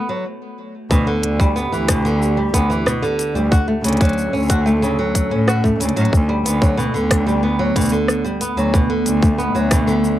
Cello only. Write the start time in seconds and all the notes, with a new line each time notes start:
0.91 D2
1.23 D2
1.72 D2
2.54 D2
3.35 D2
3.84 D2
4.33 D2
5.31 A2
5.80 D2
5.96 A2
6.13 D2
6.45 D2
6.94 D2
7.76 D2
8.57 D2
9.06 D2
9.55 D2